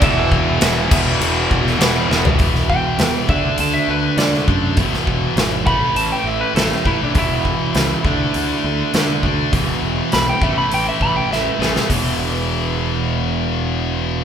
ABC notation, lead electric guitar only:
X:1
M:4/4
L:1/16
Q:1/4=101
K:A
V:1 name="Lead electric guitar"
e12- e2 z2 | z2 =g4 e2 a e B2 d2 z2 | z6 b2 a =g e B A =G E D | E12 z4 |
z4 b =g e b g e b g e2 ^G2 | z16 |]